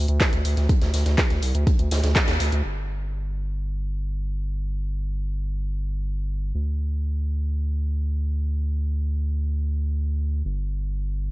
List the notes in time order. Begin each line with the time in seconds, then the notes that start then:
0.08 D2, closed hi-hat
0.21 kick, snare, clap, closed hi-hat
0.33 D2, closed hi-hat
0.45 D2, closed hi-hat, open hi-hat
0.57 D2, snare, closed hi-hat
0.69 kick, closed hi-hat
0.82 D2, snare, closed hi-hat
0.94 D2, snare, closed hi-hat, open hi-hat
1.06 D2, snare, closed hi-hat
1.18 kick, snare, clap, closed hi-hat
1.30 D2, snare, closed hi-hat
1.42 C2, closed hi-hat, open hi-hat
1.55 D2, closed hi-hat
1.67 kick, closed hi-hat
1.79 D2, closed hi-hat
1.91 D2, snare, closed hi-hat, open hi-hat
2.03 D2, snare, closed hi-hat
2.15 kick, snare, clap, closed hi-hat
2.27 D#2, snare, closed hi-hat
2.40 D2, closed hi-hat, open hi-hat
2.52 D2, closed hi-hat
2.65 G1
6.55 D2
10.45 G1